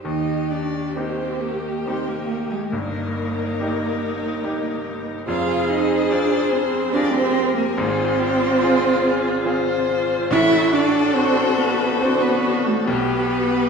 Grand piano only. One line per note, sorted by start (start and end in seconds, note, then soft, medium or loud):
0.05 2.69 D#2 medium
0.05 2.69 D#3 soft
0.97 1.82 A#3 soft
0.97 1.83 D#4 soft
0.97 1.83 G4 soft
1.87 2.69 A#3 soft
1.87 2.69 D#4 soft
1.87 2.70 G4 soft
2.72 5.23 G1 medium
2.72 5.23 G2 medium
3.60 4.40 A#3 soft
3.60 4.41 D#4 soft
3.60 4.41 G4 medium
4.44 5.24 A#3 soft
4.44 5.24 D#4 medium
4.44 5.24 G4 medium
5.28 7.74 F1 medium
5.28 7.74 F2 medium
6.12 6.91 C4 medium
6.12 6.90 F4 medium
6.12 6.91 G#4 medium
6.95 7.74 C4 medium
6.95 7.75 F4 medium
6.95 7.75 G#4 medium
7.78 10.27 G#1 medium
7.78 10.27 G#2 medium
8.62 9.42 C4 medium
8.62 9.43 F4 medium
8.62 9.43 G#4 medium
9.45 10.27 C4 medium
9.45 10.27 F4 medium
9.45 10.27 G#4 medium
10.31 12.83 A1 medium
10.31 12.83 A2 loud
11.16 11.97 C4 medium
11.16 11.97 D4 medium
11.16 11.97 F#4 medium
12.01 12.83 C4 medium
12.01 12.83 D4 medium
12.01 12.84 F#4 medium
12.87 13.69 B1 medium
12.87 13.69 B2 medium